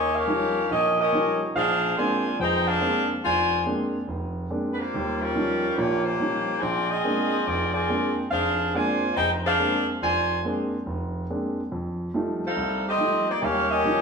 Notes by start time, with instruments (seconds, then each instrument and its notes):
Already playing: grand piano D#2, saxophone section C#4 G4 A#4 D#5
0.14 saxophone section C#4 G4 A#4 F5
0.27 grand piano F3 G3 C#4 D#4
0.71 grand piano A#1, saxophone section C#4 G4 A#4 D#5
0.99 saxophone section C#4 G4 A#4 D#5
1.12 grand piano F3 G3 C#4 D#4
1.56 grand piano A#1, saxophone section D4 G#4 C5 F5
1.97 grand piano G#3 A#3 C4 D4, saxophone section F4 C5 D5 G#5
2.39 grand piano F1 F2, saxophone section D#4 G#4 C5 G5
2.67 saxophone section D4 G#4 C5 F5
2.81 grand piano G#3 A#3 C4 D4
3.24 grand piano F1, saxophone section F4 C5 D5 G#5
3.66 grand piano G#3 A#3 C4 D4
4.08 grand piano F1
4.50 grand piano G#3 A#3 C4 D4
4.71 saxophone section B4
4.79 saxophone section A#3 F4 G4 C5
4.94 grand piano D#2 G3
5.20 saxophone section G3 C#4 F4 A#4
5.35 grand piano F3 G3 C#4 D#4
5.77 grand piano A#1 A#2, saxophone section A#3 F4 G4 C#5
6.05 saxophone section A#3 F4 G4 C5
6.20 grand piano F3 G3 C#4 D#4
6.60 grand piano A#1, saxophone section C4 F4 G#4 D5
6.89 saxophone section C4 F4 G#4 D#5
7.04 grand piano G#3 A#3 C4 D4
7.46 grand piano F1, saxophone section C4 F4 G#4 D5
7.73 saxophone section C4 F4 G#4 D5
7.89 grand piano G#3 A#3 C4 D4
8.31 grand piano F1, saxophone section D4 G#4 C5 F5
8.74 grand piano G#3 A#3 C4 D4, saxophone section F4 C5 D5 G#5
9.16 grand piano F1, saxophone section D#4 G#4 C5 G5
9.45 saxophone section D4 G#4 C5 F5
9.60 grand piano G#3 A#3 C4 D4
10.02 grand piano F1, saxophone section F4 C5 D5 G#5
10.45 grand piano G#3 A#3 C4 D4
10.86 grand piano F1
11.30 grand piano G#3 A#3 C4 D4
11.72 grand piano F2
12.14 grand piano F3 G3 A3 D#4
12.46 saxophone section D#4 A4 C5 F5
12.57 grand piano C2
12.88 saxophone section C4 G4 A4 D#5
12.98 grand piano F3 G3 A3 D#4
13.30 saxophone section A#3 D#4 G4 D5
13.42 grand piano D#2 G3, saxophone section C#4 G4 A#4 F5
13.70 saxophone section C#4 G4 A#4 D#5
13.84 grand piano F3 G3 C#4 D#4